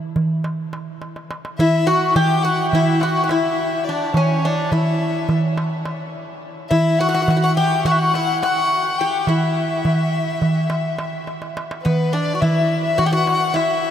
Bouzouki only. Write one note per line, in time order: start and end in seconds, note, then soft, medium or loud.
0.00 0.97 E4 medium
1.60 1.86 E4 loud
1.87 2.16 F#4 loud
2.16 2.42 G4 loud
2.45 2.73 F#4 medium
2.75 3.02 E4 medium
3.03 3.22 F#4 medium
3.24 3.30 F#4 medium
3.31 3.83 E4 medium
3.89 4.17 D4 medium
4.17 4.45 C#4 medium
4.45 4.72 D4 medium
4.73 5.32 E4 medium
6.71 7.00 E4 medium
7.01 7.07 F#4 loud
7.09 7.13 F#4 medium
7.14 7.21 F#4 medium
7.22 7.29 F#4 medium
7.30 7.35 F#4 medium
7.37 7.43 F#4 medium
7.44 7.51 F#4 medium
7.57 7.83 G4 loud
7.86 8.15 F#4 loud
8.15 8.43 E4 medium
8.43 9.00 F#4 loud
9.01 9.28 G4 medium
9.29 11.23 E4 medium
11.85 12.14 B3 medium
12.13 12.34 D4 medium
12.35 12.41 F#4 medium
12.42 12.98 E4 medium
12.98 13.05 F#4 loud
13.06 13.12 G4 medium
13.13 13.54 F#4 medium
13.54 13.91 E4 medium